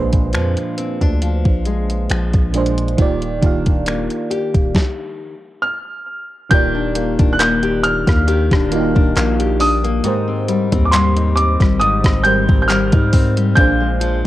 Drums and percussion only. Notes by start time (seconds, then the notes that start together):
0.13 kick, closed hi-hat
0.33 finger snap, closed hi-hat
0.57 closed hi-hat
0.78 closed hi-hat
1.01 kick, closed hi-hat
1.22 closed hi-hat
1.45 kick
1.65 closed hi-hat
1.90 closed hi-hat
2.10 finger snap, closed hi-hat
2.33 kick, closed hi-hat
2.54 closed hi-hat
2.66 closed hi-hat
2.78 closed hi-hat
2.88 closed hi-hat
2.98 kick, closed hi-hat
3.22 closed hi-hat
3.42 kick, closed hi-hat
3.66 kick, closed hi-hat
3.86 finger snap, closed hi-hat
4.10 closed hi-hat
4.31 closed hi-hat
4.54 kick, closed hi-hat
4.75 kick, snare
6.51 kick, closed hi-hat
6.95 closed hi-hat
7.19 kick, closed hi-hat
7.39 clap, closed hi-hat
7.63 closed hi-hat
7.84 closed hi-hat
8.07 kick, cross-stick, closed hi-hat
8.28 closed hi-hat
8.51 kick, cross-stick, closed hi-hat
8.72 closed hi-hat
8.96 kick
9.16 clap, closed hi-hat
9.40 closed hi-hat
9.60 open hi-hat
9.85 closed hi-hat
10.04 closed hi-hat
10.48 closed hi-hat
10.72 kick, closed hi-hat
10.92 clap, closed hi-hat
11.17 closed hi-hat
11.37 closed hi-hat
11.60 kick, cross-stick, closed hi-hat
11.81 closed hi-hat
12.04 kick, cross-stick, closed hi-hat
12.25 closed hi-hat
12.49 kick
12.68 clap, closed hi-hat
12.92 kick, closed hi-hat
13.13 kick, open hi-hat
13.37 closed hi-hat
13.57 kick, closed hi-hat
14.01 closed hi-hat